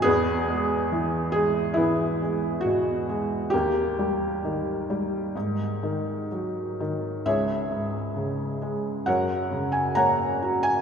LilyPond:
<<
  \new Staff \with { instrumentName = "Felt piano" } { \time 4/4 \key e \lydian \tempo 4 = 67 << { gis'4. gis'8 e'4 fis'4 | g'2. r4 | \key fis \dorian e''2 fis''8. gis''16 ais''8. gis''16 | } \\ { b2 b2 | ais2. r4 | <gis' cis''>2 <ais' cis''>4 <cis'' fis''>4 | } >> }
  \new Staff \with { instrumentName = "Felt piano" } { \clef bass \time 4/4 \key e \lydian e,8 gis8 e8 gis8 e8 gis8 b,8 gis8 | dis,8 g8 dis8 g8 gis,8 dis8 fis8 dis8 | \key fis \dorian cis,8 gis,8 cis8 gis8 fis,8 cis8 ais8 fis'8 | }
>>